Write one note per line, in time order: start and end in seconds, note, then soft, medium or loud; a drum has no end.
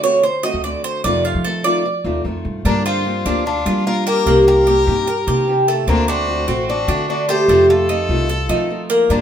0.00 0.50 D3 medium
0.00 0.23 F#4 medium
0.00 0.23 C#5 loud
0.04 0.23 A3 medium
0.04 0.23 C4 medium
0.23 0.43 C5 medium
0.23 muted steel-string acoustic guitar stroke medium
0.43 0.63 A3 medium
0.43 0.63 C4 medium
0.43 0.63 F#4 medium
0.43 0.63 D#5 loud
0.54 0.73 D2 medium
0.64 1.03 D3 soft
0.64 1.04 A3 soft
0.64 1.04 C4 medium
0.64 1.04 F#4 medium
0.64 0.83 D5 medium
0.84 1.04 C5 loud
1.04 1.33 F2 loud
1.04 1.44 C3 medium
1.04 1.43 D#3 medium
1.04 1.44 A3 medium
1.04 1.45 C4 medium
1.04 1.45 F4 medium
1.04 1.24 D5 medium
1.25 1.44 F4 medium
1.35 2.01 F3 medium
1.44 1.64 D#3 medium
1.44 1.64 A3 medium
1.44 1.64 C4 medium
1.44 1.64 F4 medium
1.44 1.64 A4 medium
1.64 1.84 D#3 medium
1.64 1.85 A3 medium
1.64 1.84 C4 medium
1.64 1.84 F4 medium
1.64 2.21 D5 loud
1.85 muted steel-string acoustic guitar stroke medium
2.04 2.23 D#2 loud
2.04 2.24 D#3 medium
2.04 2.24 A3 medium
2.04 2.25 C4 medium
2.04 2.24 F4 medium
2.25 2.43 F2 medium
2.25 2.64 D#3 medium
2.25 2.65 A3 medium
2.25 2.65 C4 medium
2.25 2.65 F4 medium
2.45 2.63 G2 medium
2.65 3.23 G2 loud
2.65 3.05 D3 medium
2.65 3.04 F3 medium
2.65 2.84 A#3 medium
2.65 3.04 A#3 medium
2.65 2.85 D4 medium
2.65 3.05 D4 medium
2.65 3.06 G4 medium
2.85 3.42 C4 loud
2.85 3.42 F4 medium
2.85 3.25 F4 medium
3.05 3.25 F3 medium
3.05 3.25 A#3 medium
3.05 3.25 D4 medium
3.05 3.24 G4 medium
3.25 3.64 D2 loud
3.25 3.45 F3 medium
3.25 3.45 A#3 medium
3.25 3.65 D4 medium
3.25 3.45 D4 medium
3.25 3.45 G4 medium
3.46 3.87 D4 loud
3.46 3.83 F4 medium
3.46 muted steel-string acoustic guitar stroke medium
3.65 3.84 F3 medium
3.65 4.23 G3 loud
3.65 3.85 A#3 medium
3.65 3.85 D4 medium
3.65 4.05 F4 medium
3.65 3.85 G4 medium
3.85 4.25 F3 medium
3.85 4.26 A#3 medium
3.85 4.26 D4 medium
3.85 4.07 F4 loud
3.85 4.26 G4 medium
3.85 4.05 A#4 loud
4.06 4.25 A#3 medium
4.06 4.44 G4 loud
4.06 4.44 A#4 loud
4.26 4.84 C2 loud
4.26 4.66 C3 medium
4.26 4.66 D#3 medium
4.26 4.66 A#3 medium
4.26 4.67 C4 medium
4.26 4.67 G4 medium
4.47 5.64 G4 loud
4.47 5.64 A#4 loud
4.67 4.86 D#3 medium
4.67 4.86 A#3 medium
4.67 4.86 C4 medium
4.67 5.06 G4 medium
4.67 4.85 G4 medium
4.86 5.25 G2 medium
4.86 5.07 D#3 medium
4.86 5.07 A#3 medium
4.86 5.07 C4 medium
4.86 5.06 G4 medium
5.07 5.27 A#4 medium
5.07 muted steel-string acoustic guitar stroke medium
5.27 5.85 C3 loud
5.27 5.46 D#3 medium
5.27 5.47 A#3 medium
5.27 5.47 C4 medium
5.27 5.47 G4 medium
5.27 5.67 G4 medium
5.47 5.87 D#3 medium
5.47 5.87 A#3 medium
5.47 5.88 C4 medium
5.47 5.88 G4 medium
5.68 5.87 A3 medium
5.87 6.45 D2 loud
5.87 6.27 D3 medium
5.87 6.28 A3 medium
5.87 6.09 A#3 loud
5.87 6.07 C4 medium
5.87 6.28 C4 medium
5.87 6.07 D4 medium
5.87 6.28 F#4 medium
6.08 6.65 C4 loud
6.08 6.47 D4 medium
6.08 6.64 F#4 loud
6.28 6.47 D3 medium
6.28 6.48 A3 medium
6.28 6.47 C4 medium
6.28 6.46 F#4 medium
6.47 6.86 A1 medium
6.47 6.68 A3 medium
6.47 6.87 C4 medium
6.47 6.67 C4 medium
6.47 6.67 F#4 medium
6.68 7.07 D4 loud
6.68 7.06 F#4 medium
6.68 muted steel-string acoustic guitar stroke medium
6.88 7.46 D3 loud
6.88 7.07 A3 medium
6.88 7.08 C4 medium
6.88 7.28 D4 medium
6.88 7.08 F#4 medium
7.08 7.48 D3 soft
7.08 7.48 A3 medium
7.08 7.48 C4 medium
7.08 7.30 D4 medium
7.08 7.27 F#4 medium
7.08 7.49 F#4 medium
7.28 7.48 A3 loud
7.28 7.71 G4 loud
7.28 7.66 C5 loud
7.48 8.06 F2 loud
7.48 7.88 C3 medium
7.48 7.88 D#3 medium
7.48 7.88 A3 medium
7.48 7.89 A3 medium
7.48 7.89 C4 medium
7.48 7.89 F4 medium
7.69 8.86 F4 loud
7.69 8.86 A4 loud
7.89 8.08 D#3 medium
7.89 8.09 A3 medium
7.89 8.08 C4 medium
7.89 8.28 D#4 medium
7.89 8.08 F4 medium
8.09 8.47 C2 medium
8.09 8.29 D#3 medium
8.09 8.29 A3 medium
8.09 8.29 C4 medium
8.09 8.29 F4 medium
8.29 8.49 A4 medium
8.29 muted steel-string acoustic guitar stroke medium
8.49 8.68 D#3 medium
8.49 9.07 F3 loud
8.49 8.69 A3 medium
8.49 8.69 C4 medium
8.49 8.89 D#4 medium
8.49 8.69 F4 medium
8.70 9.09 D#3 soft
8.70 9.10 A3 medium
8.70 9.10 C4 medium
8.70 9.10 F4 medium
8.90 9.09 A#3 loud
9.10 9.21 G2 loud
9.10 9.21 D3 medium
9.10 9.21 F3 medium
9.10 9.21 A#3 medium
9.10 9.21 D4 medium
9.10 9.21 G4 medium